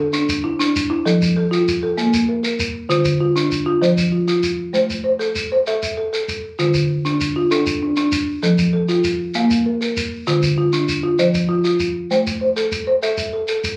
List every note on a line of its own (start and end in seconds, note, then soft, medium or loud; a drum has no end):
0.00 0.44 A4 medium
0.13 0.58 D4 medium
0.13 shekere medium
0.29 shekere medium
0.44 0.89 E4 medium
0.59 0.90 D4 medium
0.59 shekere medium
0.76 shekere medium
0.90 1.21 E4 medium
1.05 1.36 F3 medium
1.05 1.35 A4 medium
1.05 shekere medium
1.22 shekere medium
1.37 1.82 A4 medium
1.51 1.82 F4 medium
1.51 shekere soft
1.68 shekere medium
1.83 2.13 A4 medium
1.98 2.28 A#3 medium
1.98 shekere medium
2.14 shekere medium
2.29 2.42 A#4 medium
2.43 2.74 A#4 medium
2.43 shekere medium
2.59 shekere medium
2.89 3.20 D3 medium
2.89 3.19 F4 medium
2.89 shekere medium
3.05 shekere medium
3.21 3.65 F4 medium
3.36 3.66 D4 medium
3.36 shekere medium
3.52 shekere medium
3.66 3.97 F4 medium
3.82 4.12 F3 medium
3.82 4.28 C5 medium
3.82 shekere medium
3.98 shekere medium
4.12 4.27 F4 medium
4.28 4.59 F4 medium
4.28 shekere medium
4.43 shekere medium
4.73 5.04 A3 medium
4.73 5.03 C5 medium
4.73 shekere medium
4.90 shekere medium
5.04 5.50 C5 medium
5.19 5.51 A4 medium
5.19 shekere soft
5.35 shekere medium
5.52 5.97 C5 medium
5.67 5.96 A4 medium
5.67 6.13 E5 medium
5.67 shekere soft
5.83 shekere medium
5.97 6.12 A4 medium
6.13 6.43 A4 medium
6.13 shekere soft
6.28 shekere medium
6.59 6.89 D3 medium
6.59 7.05 F4 medium
6.59 shekere soft
6.74 shekere medium
7.05 7.36 D4 medium
7.05 shekere soft
7.21 shekere medium
7.36 7.82 F4 medium
7.51 7.81 D4 medium
7.51 7.97 A4 medium
7.51 shekere medium
7.66 shekere medium
7.83 7.96 D4 medium
7.97 8.28 D4 medium
7.97 shekere medium
8.12 shekere medium
8.43 8.73 F3 medium
8.43 8.72 A4 medium
8.43 shekere medium
8.58 shekere medium
8.73 9.19 A4 medium
8.89 9.19 F4 medium
8.89 shekere medium
9.04 shekere medium
9.34 9.66 A#3 medium
9.34 9.81 F5 medium
9.34 shekere medium
9.51 shekere medium
9.66 9.80 A#4 medium
9.81 10.11 A#4 medium
9.81 shekere medium
9.97 shekere medium
10.27 10.58 D3 medium
10.27 10.56 F4 medium
10.27 shekere medium
10.43 shekere medium
10.58 11.02 F4 medium
10.73 11.03 D4 medium
10.73 shekere medium
10.88 shekere medium
11.03 11.34 F4 medium
11.19 11.49 F3 medium
11.19 11.65 C5 medium
11.19 shekere medium
11.34 shekere medium
11.49 11.63 F4 medium
11.64 11.95 F4 medium
11.64 shekere medium
11.80 shekere medium
12.11 12.41 A3 medium
12.11 12.40 C5 medium
12.11 shekere medium
12.27 shekere medium
12.41 12.86 C5 medium
12.56 12.87 A4 medium
12.56 shekere medium
12.72 shekere medium
12.87 13.33 C5 medium
13.03 13.32 A4 medium
13.03 13.48 E5 medium
13.03 shekere medium
13.18 shekere medium
13.33 13.48 A4 medium
13.48 13.77 A4 medium
13.48 shekere medium
13.64 shekere medium